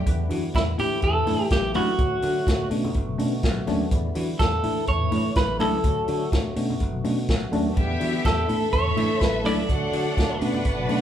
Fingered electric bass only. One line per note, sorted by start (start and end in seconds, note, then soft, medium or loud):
0.07 0.24 E2 medium
0.31 0.48 E3 loud
0.55 0.72 E2 medium
0.79 0.96 A2 medium
1.03 1.20 E2 loud
1.27 1.44 A2 medium
1.51 1.75 A1 medium
1.75 1.92 C#2 medium
1.99 2.16 D2 medium
2.23 2.40 D3 loud
2.47 2.64 D2 medium
2.71 2.88 B2 loud
2.95 3.12 F#1 loud
3.19 3.45 B2 medium
3.44 3.61 B1 loud
3.68 3.85 D#2 medium
3.92 4.09 E2 medium
4.16 4.33 E3 loud
4.40 4.57 E2 medium
4.64 4.81 A2 loud
4.88 5.05 E2 medium
5.13 5.30 A2 medium
5.36 5.61 A1 medium
5.61 5.78 C#2 medium
5.84 6.01 D2 medium
6.09 6.26 D3 loud
6.33 6.50 D2 medium
6.57 6.74 B2 loud
6.81 6.98 F#1 loud
7.05 7.31 B2 medium
7.29 7.46 B1 medium
7.53 7.70 D#2 medium
7.77 7.94 E2 medium
8.01 8.18 E3 medium
8.25 8.42 E2 medium
8.49 8.66 A2 medium
8.73 8.90 E2 medium
8.97 9.14 A2 loud
9.21 9.46 A1 medium
9.46 9.63 C#2 loud
9.70 9.87 D2 medium
9.93 10.10 D3 loud
10.17 10.34 D2 medium
10.41 10.58 B2 loud
10.65 10.82 F#1 medium
10.90 11.01 B2 medium